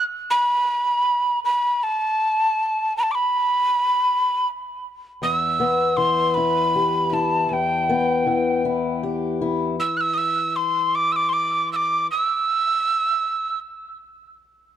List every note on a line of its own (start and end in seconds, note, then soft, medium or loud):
0.30 1.40 B5 loud
1.45 1.85 B5 medium
1.83 2.96 A5 loud
2.97 3.05 B5 medium
3.03 3.13 A5 medium
3.11 4.48 B5 medium
3.11 3.16 D6 medium
5.22 7.49 E2 medium
5.22 5.34 D#6 medium
5.34 5.98 E6 medium
5.60 7.46 B3 medium
5.97 8.25 E3 medium
5.97 6.36 C6 medium
6.34 7.12 E4 medium
6.34 7.10 B5 medium
6.76 9.03 G4 medium
7.10 8.65 E4 medium
7.10 7.49 A5 medium
7.10 7.14 B5 medium
7.49 9.79 E2 medium
7.49 7.54 A5 medium
7.53 8.64 G5 medium
7.89 9.75 B3 medium
8.26 12.08 E3 medium
8.65 9.40 E4 medium
9.03 9.75 G4 medium
9.41 9.75 E4 medium
9.80 9.98 E6 loud
9.97 10.15 E6 loud
9.97 10.02 F#6 medium
10.14 10.19 D#6 medium
10.14 10.58 E6 loud
10.56 10.97 C6 medium
10.95 11.13 D6 loud
11.12 11.30 D6 loud
11.12 11.17 E6 medium
11.29 11.34 C6 medium
11.29 11.71 D6 loud
11.73 12.07 D6 medium
11.73 11.77 E6 medium
12.11 13.59 E6 medium